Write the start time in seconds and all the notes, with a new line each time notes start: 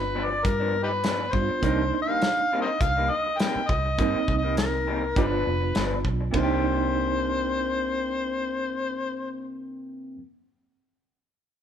Already playing: G1 B3 D4 F4 B4
0.01 muted clean electric guitar stroke
0.15 G2 F3 B3 D4
0.25 D5
0.30 muted clean electric guitar stroke
0.45 G2 A#4, kick, closed hi-hat
0.60 F3 B3 D4
0.74 muted clean electric guitar stroke
0.83 D#4 G4 B4
0.90 muted clean electric guitar stroke
1.03 G2 F3 B3 D4, snare, closed hi-hat
1.33 G2 B3 D4 F4 C5, muted clean electric guitar stroke, kick
1.49 muted clean electric guitar stroke, muted fingered electric bass stroke
1.62 C2 C3 G3 A#3 D4 D#4, kick, closed hi-hat
1.93 muted clean electric guitar stroke
2.02 F5
2.07 G3 A#3 D#4
2.22 muted clean electric guitar stroke, snare, closed hi-hat
2.38 muted clean electric guitar stroke
2.52 C3 G3 A#3 D#4
2.61 A#4 C5 D#5
2.67 muted clean electric guitar stroke
2.81 C2 F5, kick, closed hi-hat
2.97 G3 A#3 D#4
3.10 D#5, muted clean electric guitar stroke
3.26 muted clean electric guitar stroke
3.39 C3 G3 A#3 D#4 G5, snare, closed hi-hat
3.55 muted fingered electric bass stroke
3.68 C2 D#5, muted clean electric guitar stroke, kick
3.85 muted clean electric guitar stroke
3.98 G2 C3 G3 A#3 C4 D#4, kick, closed hi-hat
4.15 muted fingered electric bass stroke
4.28 C2, muted clean electric guitar stroke, kick
4.38 D#5
4.43 G3 A#3 D#4
4.57 A#4, muted clean electric guitar stroke, snare, closed hi-hat
4.73 muted clean electric guitar stroke
4.87 C3 G3 A#3 D#4
5.02 muted clean electric guitar stroke
5.16 G1 G2 F3 B3 D4 D#4 F4 G4 B4, kick, closed hi-hat
5.31 F3 B3 D4
5.46 F1, muted clean electric guitar stroke
5.61 muted clean electric guitar stroke
5.75 G1 G2 F3 B3 D4, snare, closed hi-hat
6.05 B1, muted clean electric guitar stroke, kick
6.21 muted clean electric guitar stroke
6.31 C2 C3 A#3 D4, kick, floor tom, ride bell
6.36 A#3 D#4 C5
6.43 G4